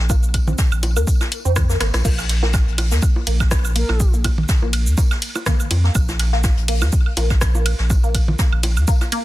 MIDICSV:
0, 0, Header, 1, 5, 480
1, 0, Start_track
1, 0, Tempo, 487805
1, 96, Time_signature, 4, 2, 24, 8
1, 9098, End_track
2, 0, Start_track
2, 0, Title_t, "Flute"
2, 0, Program_c, 0, 73
2, 3697, Note_on_c, 0, 70, 89
2, 4069, Note_off_c, 0, 70, 0
2, 9098, End_track
3, 0, Start_track
3, 0, Title_t, "Synth arpeggio sound"
3, 0, Program_c, 1, 84
3, 97, Note_on_c, 1, 58, 86
3, 149, Note_off_c, 1, 58, 0
3, 469, Note_on_c, 1, 60, 74
3, 511, Note_off_c, 1, 60, 0
3, 948, Note_on_c, 1, 58, 82
3, 991, Note_off_c, 1, 58, 0
3, 1428, Note_on_c, 1, 60, 97
3, 1493, Note_off_c, 1, 60, 0
3, 1669, Note_on_c, 1, 58, 102
3, 1711, Note_off_c, 1, 58, 0
3, 1776, Note_on_c, 1, 58, 75
3, 1808, Note_off_c, 1, 58, 0
3, 2015, Note_on_c, 1, 58, 90
3, 2068, Note_off_c, 1, 58, 0
3, 2388, Note_on_c, 1, 58, 73
3, 2431, Note_off_c, 1, 58, 0
3, 2868, Note_on_c, 1, 58, 78
3, 2911, Note_off_c, 1, 58, 0
3, 3216, Note_on_c, 1, 58, 80
3, 3269, Note_off_c, 1, 58, 0
3, 3696, Note_on_c, 1, 58, 76
3, 3749, Note_off_c, 1, 58, 0
3, 4070, Note_on_c, 1, 58, 80
3, 4112, Note_off_c, 1, 58, 0
3, 4548, Note_on_c, 1, 58, 79
3, 4591, Note_off_c, 1, 58, 0
3, 4896, Note_on_c, 1, 58, 80
3, 4949, Note_off_c, 1, 58, 0
3, 5377, Note_on_c, 1, 58, 83
3, 5429, Note_off_c, 1, 58, 0
3, 5749, Note_on_c, 1, 58, 77
3, 5791, Note_off_c, 1, 58, 0
3, 6228, Note_on_c, 1, 58, 77
3, 6271, Note_off_c, 1, 58, 0
3, 6576, Note_on_c, 1, 58, 81
3, 6629, Note_off_c, 1, 58, 0
3, 7056, Note_on_c, 1, 58, 76
3, 7109, Note_off_c, 1, 58, 0
3, 7428, Note_on_c, 1, 58, 76
3, 7471, Note_off_c, 1, 58, 0
3, 7908, Note_on_c, 1, 58, 79
3, 7951, Note_off_c, 1, 58, 0
3, 8256, Note_on_c, 1, 58, 83
3, 8309, Note_off_c, 1, 58, 0
3, 8736, Note_on_c, 1, 58, 84
3, 8789, Note_off_c, 1, 58, 0
3, 8977, Note_on_c, 1, 58, 103
3, 9029, Note_off_c, 1, 58, 0
3, 9098, End_track
4, 0, Start_track
4, 0, Title_t, "Sub bass"
4, 0, Program_c, 2, 38
4, 0, Note_on_c, 2, 34, 96
4, 534, Note_off_c, 2, 34, 0
4, 708, Note_on_c, 2, 34, 91
4, 948, Note_on_c, 2, 39, 84
4, 963, Note_off_c, 2, 34, 0
4, 1030, Note_off_c, 2, 39, 0
4, 1429, Note_on_c, 2, 41, 87
4, 1734, Note_off_c, 2, 41, 0
4, 1777, Note_on_c, 2, 32, 102
4, 1877, Note_off_c, 2, 32, 0
4, 1908, Note_on_c, 2, 34, 92
4, 1990, Note_off_c, 2, 34, 0
4, 2016, Note_on_c, 2, 34, 100
4, 2577, Note_off_c, 2, 34, 0
4, 2629, Note_on_c, 2, 34, 87
4, 2870, Note_on_c, 2, 39, 83
4, 2884, Note_off_c, 2, 34, 0
4, 2951, Note_off_c, 2, 39, 0
4, 3218, Note_on_c, 2, 34, 104
4, 3778, Note_off_c, 2, 34, 0
4, 3829, Note_on_c, 2, 34, 99
4, 4375, Note_off_c, 2, 34, 0
4, 4550, Note_on_c, 2, 34, 91
4, 4790, Note_on_c, 2, 39, 81
4, 4804, Note_off_c, 2, 34, 0
4, 4871, Note_off_c, 2, 39, 0
4, 5616, Note_on_c, 2, 41, 88
4, 5804, Note_off_c, 2, 41, 0
4, 5856, Note_on_c, 2, 34, 103
4, 6417, Note_off_c, 2, 34, 0
4, 6468, Note_on_c, 2, 34, 90
4, 6707, Note_on_c, 2, 39, 81
4, 6722, Note_off_c, 2, 34, 0
4, 6789, Note_off_c, 2, 39, 0
4, 7054, Note_on_c, 2, 34, 106
4, 7616, Note_off_c, 2, 34, 0
4, 7667, Note_on_c, 2, 34, 96
4, 8214, Note_off_c, 2, 34, 0
4, 8387, Note_on_c, 2, 34, 90
4, 8628, Note_on_c, 2, 39, 89
4, 8643, Note_off_c, 2, 34, 0
4, 8710, Note_off_c, 2, 39, 0
4, 9098, End_track
5, 0, Start_track
5, 0, Title_t, "Drums"
5, 92, Note_on_c, 9, 54, 78
5, 95, Note_on_c, 9, 82, 65
5, 96, Note_on_c, 9, 36, 110
5, 96, Note_on_c, 9, 61, 42
5, 96, Note_on_c, 9, 76, 42
5, 190, Note_off_c, 9, 54, 0
5, 193, Note_off_c, 9, 82, 0
5, 194, Note_off_c, 9, 36, 0
5, 195, Note_off_c, 9, 61, 0
5, 195, Note_off_c, 9, 76, 0
5, 228, Note_on_c, 9, 82, 32
5, 327, Note_off_c, 9, 82, 0
5, 334, Note_on_c, 9, 54, 67
5, 335, Note_on_c, 9, 42, 94
5, 336, Note_on_c, 9, 36, 58
5, 336, Note_on_c, 9, 76, 43
5, 432, Note_off_c, 9, 54, 0
5, 433, Note_off_c, 9, 42, 0
5, 434, Note_off_c, 9, 36, 0
5, 434, Note_off_c, 9, 76, 0
5, 467, Note_on_c, 9, 47, 80
5, 467, Note_on_c, 9, 61, 44
5, 468, Note_on_c, 9, 82, 31
5, 566, Note_off_c, 9, 47, 0
5, 566, Note_off_c, 9, 61, 0
5, 567, Note_off_c, 9, 82, 0
5, 571, Note_on_c, 9, 54, 90
5, 575, Note_on_c, 9, 38, 107
5, 575, Note_on_c, 9, 82, 65
5, 576, Note_on_c, 9, 36, 116
5, 669, Note_off_c, 9, 54, 0
5, 674, Note_off_c, 9, 36, 0
5, 674, Note_off_c, 9, 38, 0
5, 674, Note_off_c, 9, 82, 0
5, 708, Note_on_c, 9, 82, 31
5, 709, Note_on_c, 9, 76, 76
5, 806, Note_off_c, 9, 82, 0
5, 807, Note_off_c, 9, 76, 0
5, 816, Note_on_c, 9, 42, 90
5, 816, Note_on_c, 9, 61, 46
5, 821, Note_on_c, 9, 54, 75
5, 915, Note_off_c, 9, 42, 0
5, 915, Note_off_c, 9, 61, 0
5, 920, Note_off_c, 9, 54, 0
5, 949, Note_on_c, 9, 82, 44
5, 950, Note_on_c, 9, 76, 41
5, 1047, Note_off_c, 9, 82, 0
5, 1048, Note_off_c, 9, 76, 0
5, 1056, Note_on_c, 9, 36, 120
5, 1057, Note_on_c, 9, 82, 68
5, 1058, Note_on_c, 9, 54, 95
5, 1154, Note_off_c, 9, 36, 0
5, 1155, Note_off_c, 9, 82, 0
5, 1156, Note_off_c, 9, 54, 0
5, 1188, Note_on_c, 9, 38, 48
5, 1189, Note_on_c, 9, 61, 43
5, 1189, Note_on_c, 9, 76, 41
5, 1190, Note_on_c, 9, 82, 31
5, 1286, Note_off_c, 9, 38, 0
5, 1288, Note_off_c, 9, 61, 0
5, 1288, Note_off_c, 9, 76, 0
5, 1288, Note_off_c, 9, 82, 0
5, 1297, Note_on_c, 9, 42, 91
5, 1303, Note_on_c, 9, 54, 69
5, 1396, Note_off_c, 9, 42, 0
5, 1401, Note_off_c, 9, 54, 0
5, 1430, Note_on_c, 9, 82, 32
5, 1528, Note_off_c, 9, 82, 0
5, 1536, Note_on_c, 9, 36, 120
5, 1537, Note_on_c, 9, 37, 103
5, 1537, Note_on_c, 9, 38, 39
5, 1537, Note_on_c, 9, 47, 97
5, 1537, Note_on_c, 9, 61, 47
5, 1537, Note_on_c, 9, 76, 81
5, 1537, Note_on_c, 9, 82, 65
5, 1541, Note_on_c, 9, 54, 64
5, 1635, Note_off_c, 9, 36, 0
5, 1635, Note_off_c, 9, 37, 0
5, 1635, Note_off_c, 9, 38, 0
5, 1635, Note_off_c, 9, 47, 0
5, 1635, Note_off_c, 9, 61, 0
5, 1635, Note_off_c, 9, 76, 0
5, 1635, Note_off_c, 9, 82, 0
5, 1639, Note_off_c, 9, 54, 0
5, 1669, Note_on_c, 9, 82, 46
5, 1675, Note_on_c, 9, 38, 53
5, 1768, Note_off_c, 9, 82, 0
5, 1774, Note_off_c, 9, 38, 0
5, 1774, Note_on_c, 9, 38, 110
5, 1777, Note_on_c, 9, 37, 66
5, 1777, Note_on_c, 9, 42, 96
5, 1777, Note_on_c, 9, 76, 43
5, 1786, Note_on_c, 9, 54, 77
5, 1872, Note_off_c, 9, 38, 0
5, 1875, Note_off_c, 9, 37, 0
5, 1875, Note_off_c, 9, 42, 0
5, 1875, Note_off_c, 9, 76, 0
5, 1884, Note_off_c, 9, 54, 0
5, 1905, Note_on_c, 9, 38, 110
5, 1908, Note_on_c, 9, 54, 82
5, 1909, Note_on_c, 9, 61, 43
5, 1910, Note_on_c, 9, 37, 72
5, 1910, Note_on_c, 9, 82, 32
5, 2003, Note_off_c, 9, 38, 0
5, 2006, Note_off_c, 9, 54, 0
5, 2008, Note_off_c, 9, 61, 0
5, 2009, Note_off_c, 9, 37, 0
5, 2009, Note_off_c, 9, 82, 0
5, 2016, Note_on_c, 9, 36, 115
5, 2016, Note_on_c, 9, 61, 46
5, 2017, Note_on_c, 9, 49, 76
5, 2017, Note_on_c, 9, 54, 87
5, 2017, Note_on_c, 9, 82, 67
5, 2115, Note_off_c, 9, 36, 0
5, 2115, Note_off_c, 9, 61, 0
5, 2116, Note_off_c, 9, 49, 0
5, 2116, Note_off_c, 9, 54, 0
5, 2116, Note_off_c, 9, 82, 0
5, 2149, Note_on_c, 9, 76, 42
5, 2150, Note_on_c, 9, 38, 45
5, 2150, Note_on_c, 9, 82, 31
5, 2247, Note_off_c, 9, 76, 0
5, 2248, Note_off_c, 9, 38, 0
5, 2248, Note_off_c, 9, 82, 0
5, 2258, Note_on_c, 9, 42, 95
5, 2258, Note_on_c, 9, 51, 88
5, 2259, Note_on_c, 9, 54, 71
5, 2261, Note_on_c, 9, 38, 44
5, 2356, Note_off_c, 9, 42, 0
5, 2356, Note_off_c, 9, 51, 0
5, 2357, Note_off_c, 9, 54, 0
5, 2359, Note_off_c, 9, 38, 0
5, 2389, Note_on_c, 9, 61, 46
5, 2392, Note_on_c, 9, 38, 57
5, 2487, Note_off_c, 9, 61, 0
5, 2490, Note_off_c, 9, 38, 0
5, 2490, Note_on_c, 9, 54, 97
5, 2496, Note_on_c, 9, 36, 127
5, 2497, Note_on_c, 9, 76, 87
5, 2497, Note_on_c, 9, 82, 63
5, 2502, Note_on_c, 9, 38, 108
5, 2589, Note_off_c, 9, 54, 0
5, 2595, Note_off_c, 9, 36, 0
5, 2595, Note_off_c, 9, 76, 0
5, 2596, Note_off_c, 9, 82, 0
5, 2600, Note_off_c, 9, 38, 0
5, 2634, Note_on_c, 9, 42, 44
5, 2733, Note_off_c, 9, 42, 0
5, 2737, Note_on_c, 9, 42, 95
5, 2737, Note_on_c, 9, 46, 91
5, 2737, Note_on_c, 9, 51, 84
5, 2737, Note_on_c, 9, 61, 46
5, 2737, Note_on_c, 9, 76, 41
5, 2835, Note_off_c, 9, 42, 0
5, 2835, Note_off_c, 9, 46, 0
5, 2835, Note_off_c, 9, 51, 0
5, 2835, Note_off_c, 9, 61, 0
5, 2835, Note_off_c, 9, 76, 0
5, 2869, Note_on_c, 9, 82, 43
5, 2871, Note_on_c, 9, 38, 51
5, 2968, Note_off_c, 9, 82, 0
5, 2970, Note_off_c, 9, 38, 0
5, 2970, Note_on_c, 9, 54, 86
5, 2976, Note_on_c, 9, 36, 127
5, 2977, Note_on_c, 9, 76, 41
5, 2977, Note_on_c, 9, 82, 66
5, 3068, Note_off_c, 9, 54, 0
5, 3075, Note_off_c, 9, 36, 0
5, 3075, Note_off_c, 9, 76, 0
5, 3076, Note_off_c, 9, 82, 0
5, 3110, Note_on_c, 9, 61, 46
5, 3208, Note_off_c, 9, 61, 0
5, 3215, Note_on_c, 9, 54, 62
5, 3217, Note_on_c, 9, 42, 96
5, 3217, Note_on_c, 9, 51, 90
5, 3314, Note_off_c, 9, 54, 0
5, 3315, Note_off_c, 9, 42, 0
5, 3315, Note_off_c, 9, 51, 0
5, 3349, Note_on_c, 9, 36, 61
5, 3349, Note_on_c, 9, 76, 83
5, 3350, Note_on_c, 9, 82, 31
5, 3354, Note_on_c, 9, 38, 42
5, 3447, Note_off_c, 9, 36, 0
5, 3447, Note_off_c, 9, 76, 0
5, 3448, Note_off_c, 9, 82, 0
5, 3452, Note_on_c, 9, 54, 82
5, 3453, Note_off_c, 9, 38, 0
5, 3456, Note_on_c, 9, 36, 121
5, 3456, Note_on_c, 9, 37, 107
5, 3456, Note_on_c, 9, 82, 66
5, 3457, Note_on_c, 9, 61, 47
5, 3458, Note_on_c, 9, 38, 114
5, 3550, Note_off_c, 9, 54, 0
5, 3554, Note_off_c, 9, 37, 0
5, 3554, Note_off_c, 9, 82, 0
5, 3555, Note_off_c, 9, 36, 0
5, 3556, Note_off_c, 9, 38, 0
5, 3556, Note_off_c, 9, 61, 0
5, 3589, Note_on_c, 9, 76, 42
5, 3589, Note_on_c, 9, 82, 45
5, 3687, Note_off_c, 9, 76, 0
5, 3687, Note_off_c, 9, 82, 0
5, 3697, Note_on_c, 9, 42, 102
5, 3697, Note_on_c, 9, 51, 90
5, 3699, Note_on_c, 9, 54, 69
5, 3795, Note_off_c, 9, 42, 0
5, 3795, Note_off_c, 9, 51, 0
5, 3797, Note_off_c, 9, 54, 0
5, 3827, Note_on_c, 9, 38, 54
5, 3829, Note_on_c, 9, 61, 46
5, 3829, Note_on_c, 9, 76, 44
5, 3925, Note_off_c, 9, 38, 0
5, 3927, Note_off_c, 9, 61, 0
5, 3927, Note_off_c, 9, 76, 0
5, 3936, Note_on_c, 9, 82, 63
5, 3937, Note_on_c, 9, 36, 120
5, 3941, Note_on_c, 9, 54, 77
5, 4035, Note_off_c, 9, 36, 0
5, 4035, Note_off_c, 9, 82, 0
5, 4039, Note_off_c, 9, 54, 0
5, 4068, Note_on_c, 9, 82, 30
5, 4167, Note_off_c, 9, 82, 0
5, 4176, Note_on_c, 9, 42, 99
5, 4176, Note_on_c, 9, 51, 84
5, 4177, Note_on_c, 9, 36, 64
5, 4178, Note_on_c, 9, 61, 49
5, 4178, Note_on_c, 9, 76, 81
5, 4181, Note_on_c, 9, 54, 74
5, 4275, Note_off_c, 9, 36, 0
5, 4275, Note_off_c, 9, 42, 0
5, 4275, Note_off_c, 9, 51, 0
5, 4276, Note_off_c, 9, 61, 0
5, 4276, Note_off_c, 9, 76, 0
5, 4280, Note_off_c, 9, 54, 0
5, 4310, Note_on_c, 9, 47, 87
5, 4409, Note_off_c, 9, 47, 0
5, 4416, Note_on_c, 9, 82, 62
5, 4417, Note_on_c, 9, 36, 127
5, 4417, Note_on_c, 9, 54, 95
5, 4417, Note_on_c, 9, 76, 40
5, 4418, Note_on_c, 9, 38, 113
5, 4514, Note_off_c, 9, 82, 0
5, 4515, Note_off_c, 9, 36, 0
5, 4515, Note_off_c, 9, 54, 0
5, 4515, Note_off_c, 9, 76, 0
5, 4517, Note_off_c, 9, 38, 0
5, 4549, Note_on_c, 9, 61, 44
5, 4648, Note_off_c, 9, 61, 0
5, 4655, Note_on_c, 9, 42, 99
5, 4655, Note_on_c, 9, 51, 84
5, 4657, Note_on_c, 9, 54, 66
5, 4658, Note_on_c, 9, 76, 41
5, 4754, Note_off_c, 9, 42, 0
5, 4754, Note_off_c, 9, 51, 0
5, 4755, Note_off_c, 9, 54, 0
5, 4756, Note_off_c, 9, 76, 0
5, 4788, Note_on_c, 9, 82, 40
5, 4887, Note_off_c, 9, 82, 0
5, 4897, Note_on_c, 9, 36, 127
5, 4897, Note_on_c, 9, 51, 47
5, 4897, Note_on_c, 9, 82, 66
5, 4898, Note_on_c, 9, 61, 45
5, 4901, Note_on_c, 9, 54, 95
5, 4995, Note_off_c, 9, 36, 0
5, 4995, Note_off_c, 9, 51, 0
5, 4995, Note_off_c, 9, 82, 0
5, 4996, Note_off_c, 9, 61, 0
5, 4999, Note_off_c, 9, 54, 0
5, 5028, Note_on_c, 9, 82, 29
5, 5029, Note_on_c, 9, 76, 78
5, 5031, Note_on_c, 9, 38, 45
5, 5127, Note_off_c, 9, 76, 0
5, 5127, Note_off_c, 9, 82, 0
5, 5130, Note_off_c, 9, 38, 0
5, 5136, Note_on_c, 9, 42, 98
5, 5136, Note_on_c, 9, 51, 86
5, 5140, Note_on_c, 9, 54, 72
5, 5235, Note_off_c, 9, 42, 0
5, 5235, Note_off_c, 9, 51, 0
5, 5238, Note_off_c, 9, 54, 0
5, 5268, Note_on_c, 9, 82, 30
5, 5269, Note_on_c, 9, 61, 48
5, 5269, Note_on_c, 9, 76, 42
5, 5366, Note_off_c, 9, 82, 0
5, 5368, Note_off_c, 9, 61, 0
5, 5368, Note_off_c, 9, 76, 0
5, 5375, Note_on_c, 9, 54, 83
5, 5376, Note_on_c, 9, 36, 120
5, 5376, Note_on_c, 9, 37, 106
5, 5376, Note_on_c, 9, 47, 100
5, 5376, Note_on_c, 9, 82, 63
5, 5379, Note_on_c, 9, 38, 109
5, 5473, Note_off_c, 9, 54, 0
5, 5474, Note_off_c, 9, 36, 0
5, 5474, Note_off_c, 9, 37, 0
5, 5474, Note_off_c, 9, 82, 0
5, 5475, Note_off_c, 9, 47, 0
5, 5478, Note_off_c, 9, 38, 0
5, 5509, Note_on_c, 9, 82, 42
5, 5510, Note_on_c, 9, 76, 40
5, 5608, Note_off_c, 9, 76, 0
5, 5608, Note_off_c, 9, 82, 0
5, 5616, Note_on_c, 9, 42, 102
5, 5616, Note_on_c, 9, 51, 92
5, 5617, Note_on_c, 9, 61, 46
5, 5619, Note_on_c, 9, 54, 70
5, 5714, Note_off_c, 9, 42, 0
5, 5714, Note_off_c, 9, 51, 0
5, 5715, Note_off_c, 9, 61, 0
5, 5718, Note_off_c, 9, 54, 0
5, 5755, Note_on_c, 9, 38, 48
5, 5854, Note_off_c, 9, 38, 0
5, 5854, Note_on_c, 9, 54, 84
5, 5855, Note_on_c, 9, 82, 61
5, 5856, Note_on_c, 9, 36, 122
5, 5857, Note_on_c, 9, 76, 78
5, 5953, Note_off_c, 9, 54, 0
5, 5954, Note_off_c, 9, 36, 0
5, 5954, Note_off_c, 9, 82, 0
5, 5955, Note_off_c, 9, 76, 0
5, 5988, Note_on_c, 9, 82, 28
5, 5990, Note_on_c, 9, 61, 49
5, 5994, Note_on_c, 9, 38, 43
5, 6086, Note_off_c, 9, 82, 0
5, 6088, Note_off_c, 9, 61, 0
5, 6092, Note_off_c, 9, 38, 0
5, 6096, Note_on_c, 9, 42, 97
5, 6096, Note_on_c, 9, 51, 84
5, 6096, Note_on_c, 9, 54, 79
5, 6097, Note_on_c, 9, 76, 41
5, 6098, Note_on_c, 9, 38, 43
5, 6194, Note_off_c, 9, 42, 0
5, 6194, Note_off_c, 9, 51, 0
5, 6195, Note_off_c, 9, 54, 0
5, 6196, Note_off_c, 9, 76, 0
5, 6197, Note_off_c, 9, 38, 0
5, 6228, Note_on_c, 9, 38, 54
5, 6326, Note_off_c, 9, 38, 0
5, 6332, Note_on_c, 9, 54, 99
5, 6336, Note_on_c, 9, 36, 127
5, 6336, Note_on_c, 9, 82, 61
5, 6337, Note_on_c, 9, 61, 47
5, 6337, Note_on_c, 9, 76, 39
5, 6338, Note_on_c, 9, 38, 109
5, 6430, Note_off_c, 9, 54, 0
5, 6434, Note_off_c, 9, 36, 0
5, 6434, Note_off_c, 9, 82, 0
5, 6435, Note_off_c, 9, 61, 0
5, 6435, Note_off_c, 9, 76, 0
5, 6436, Note_off_c, 9, 38, 0
5, 6468, Note_on_c, 9, 42, 43
5, 6566, Note_off_c, 9, 42, 0
5, 6575, Note_on_c, 9, 42, 101
5, 6575, Note_on_c, 9, 51, 83
5, 6581, Note_on_c, 9, 46, 87
5, 6674, Note_off_c, 9, 42, 0
5, 6674, Note_off_c, 9, 51, 0
5, 6679, Note_off_c, 9, 46, 0
5, 6707, Note_on_c, 9, 82, 39
5, 6709, Note_on_c, 9, 61, 49
5, 6709, Note_on_c, 9, 76, 77
5, 6715, Note_on_c, 9, 38, 47
5, 6805, Note_off_c, 9, 82, 0
5, 6807, Note_off_c, 9, 61, 0
5, 6807, Note_off_c, 9, 76, 0
5, 6813, Note_off_c, 9, 38, 0
5, 6813, Note_on_c, 9, 54, 83
5, 6815, Note_on_c, 9, 82, 61
5, 6816, Note_on_c, 9, 36, 127
5, 6911, Note_off_c, 9, 54, 0
5, 6913, Note_off_c, 9, 82, 0
5, 6914, Note_off_c, 9, 36, 0
5, 6948, Note_on_c, 9, 76, 40
5, 7047, Note_off_c, 9, 76, 0
5, 7055, Note_on_c, 9, 42, 100
5, 7055, Note_on_c, 9, 51, 84
5, 7055, Note_on_c, 9, 61, 49
5, 7056, Note_on_c, 9, 54, 66
5, 7153, Note_off_c, 9, 42, 0
5, 7153, Note_off_c, 9, 51, 0
5, 7154, Note_off_c, 9, 54, 0
5, 7154, Note_off_c, 9, 61, 0
5, 7184, Note_on_c, 9, 38, 43
5, 7186, Note_on_c, 9, 82, 29
5, 7187, Note_on_c, 9, 76, 39
5, 7188, Note_on_c, 9, 36, 69
5, 7282, Note_off_c, 9, 38, 0
5, 7285, Note_off_c, 9, 76, 0
5, 7285, Note_off_c, 9, 82, 0
5, 7286, Note_off_c, 9, 36, 0
5, 7290, Note_on_c, 9, 54, 90
5, 7295, Note_on_c, 9, 37, 108
5, 7295, Note_on_c, 9, 82, 62
5, 7296, Note_on_c, 9, 36, 126
5, 7296, Note_on_c, 9, 38, 121
5, 7389, Note_off_c, 9, 54, 0
5, 7393, Note_off_c, 9, 37, 0
5, 7393, Note_off_c, 9, 82, 0
5, 7394, Note_off_c, 9, 36, 0
5, 7394, Note_off_c, 9, 38, 0
5, 7427, Note_on_c, 9, 61, 48
5, 7427, Note_on_c, 9, 82, 43
5, 7525, Note_off_c, 9, 61, 0
5, 7526, Note_off_c, 9, 82, 0
5, 7534, Note_on_c, 9, 54, 76
5, 7534, Note_on_c, 9, 76, 80
5, 7535, Note_on_c, 9, 42, 106
5, 7535, Note_on_c, 9, 51, 92
5, 7633, Note_off_c, 9, 42, 0
5, 7633, Note_off_c, 9, 51, 0
5, 7633, Note_off_c, 9, 54, 0
5, 7633, Note_off_c, 9, 76, 0
5, 7662, Note_on_c, 9, 38, 51
5, 7760, Note_off_c, 9, 38, 0
5, 7775, Note_on_c, 9, 61, 47
5, 7775, Note_on_c, 9, 76, 38
5, 7776, Note_on_c, 9, 36, 117
5, 7776, Note_on_c, 9, 82, 63
5, 7779, Note_on_c, 9, 54, 86
5, 7873, Note_off_c, 9, 61, 0
5, 7873, Note_off_c, 9, 76, 0
5, 7874, Note_off_c, 9, 36, 0
5, 7874, Note_off_c, 9, 82, 0
5, 7877, Note_off_c, 9, 54, 0
5, 7908, Note_on_c, 9, 82, 29
5, 8006, Note_off_c, 9, 82, 0
5, 8016, Note_on_c, 9, 36, 62
5, 8016, Note_on_c, 9, 42, 102
5, 8016, Note_on_c, 9, 51, 84
5, 8016, Note_on_c, 9, 76, 39
5, 8023, Note_on_c, 9, 54, 76
5, 8114, Note_off_c, 9, 36, 0
5, 8114, Note_off_c, 9, 42, 0
5, 8114, Note_off_c, 9, 51, 0
5, 8114, Note_off_c, 9, 76, 0
5, 8121, Note_off_c, 9, 54, 0
5, 8149, Note_on_c, 9, 47, 80
5, 8149, Note_on_c, 9, 61, 48
5, 8248, Note_off_c, 9, 47, 0
5, 8248, Note_off_c, 9, 61, 0
5, 8255, Note_on_c, 9, 38, 124
5, 8255, Note_on_c, 9, 54, 88
5, 8256, Note_on_c, 9, 36, 127
5, 8256, Note_on_c, 9, 82, 61
5, 8353, Note_off_c, 9, 38, 0
5, 8354, Note_off_c, 9, 54, 0
5, 8354, Note_off_c, 9, 82, 0
5, 8355, Note_off_c, 9, 36, 0
5, 8389, Note_on_c, 9, 76, 71
5, 8487, Note_off_c, 9, 76, 0
5, 8491, Note_on_c, 9, 54, 75
5, 8495, Note_on_c, 9, 42, 98
5, 8495, Note_on_c, 9, 51, 82
5, 8497, Note_on_c, 9, 61, 48
5, 8589, Note_off_c, 9, 54, 0
5, 8594, Note_off_c, 9, 42, 0
5, 8594, Note_off_c, 9, 51, 0
5, 8595, Note_off_c, 9, 61, 0
5, 8628, Note_on_c, 9, 82, 39
5, 8629, Note_on_c, 9, 76, 38
5, 8726, Note_off_c, 9, 82, 0
5, 8728, Note_off_c, 9, 76, 0
5, 8736, Note_on_c, 9, 36, 127
5, 8736, Note_on_c, 9, 51, 49
5, 8736, Note_on_c, 9, 82, 59
5, 8738, Note_on_c, 9, 54, 91
5, 8834, Note_off_c, 9, 51, 0
5, 8834, Note_off_c, 9, 82, 0
5, 8835, Note_off_c, 9, 36, 0
5, 8837, Note_off_c, 9, 54, 0
5, 8864, Note_on_c, 9, 38, 45
5, 8868, Note_on_c, 9, 61, 45
5, 8868, Note_on_c, 9, 76, 39
5, 8868, Note_on_c, 9, 82, 28
5, 8962, Note_off_c, 9, 38, 0
5, 8966, Note_off_c, 9, 82, 0
5, 8967, Note_off_c, 9, 61, 0
5, 8967, Note_off_c, 9, 76, 0
5, 8975, Note_on_c, 9, 42, 104
5, 8975, Note_on_c, 9, 51, 86
5, 8977, Note_on_c, 9, 54, 66
5, 9074, Note_off_c, 9, 42, 0
5, 9074, Note_off_c, 9, 51, 0
5, 9076, Note_off_c, 9, 54, 0
5, 9098, End_track
0, 0, End_of_file